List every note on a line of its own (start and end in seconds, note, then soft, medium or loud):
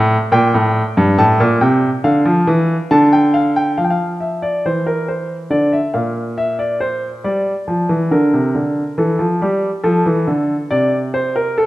0.00 0.15 A2 loud
0.00 0.27 F5 medium
0.32 0.53 A#2 medium
0.32 1.16 G5 medium
0.54 0.81 A2 medium
0.97 1.18 G2 medium
1.18 1.39 A2 medium
1.18 1.45 A5 medium
1.40 1.61 A#2 medium
1.61 1.88 C3 medium
1.61 1.88 G5 medium
2.04 2.25 D3 medium
2.04 2.88 F5 medium
2.25 2.47 F3 medium
2.47 2.74 E3 medium
2.91 3.76 D3 loud
2.91 3.12 A5 medium
3.13 3.34 G5 medium
3.34 3.55 F5 medium
3.56 3.77 G5 medium
3.78 4.63 F3 medium
3.78 3.82 F5 medium
3.84 3.92 G5 medium
3.90 4.09 F5 medium
4.20 4.42 E5 medium
4.42 4.64 D5 medium
4.66 5.50 E3 medium
4.66 4.87 C5 medium
4.86 5.08 A#4 medium
5.08 5.35 C5 medium
5.50 5.78 D3 medium
5.50 5.72 D5 medium
5.73 5.94 E5 medium
5.94 7.21 A#2 medium
5.94 6.21 F5 medium
6.38 6.59 E5 medium
6.59 6.81 D5 medium
6.80 7.08 C5 medium
7.24 7.52 G3 medium
7.24 8.09 D5 medium
7.68 7.89 F3 medium
7.89 8.11 E3 medium
8.11 8.32 D3 medium
8.11 8.95 A#4 medium
8.33 8.54 C3 medium
8.55 8.82 D3 medium
8.98 9.19 E3 medium
8.98 9.25 A4 medium
9.19 9.40 F3 medium
9.41 9.69 G3 medium
9.41 9.68 G4 medium
9.84 10.05 F3 medium
9.84 10.67 A4 medium
10.06 10.27 E3 medium
10.27 10.54 D3 medium
10.71 11.66 C3 medium
10.71 10.97 D5 medium
11.14 11.35 C5 medium
11.36 11.56 A#4 medium
11.58 11.66 A4 medium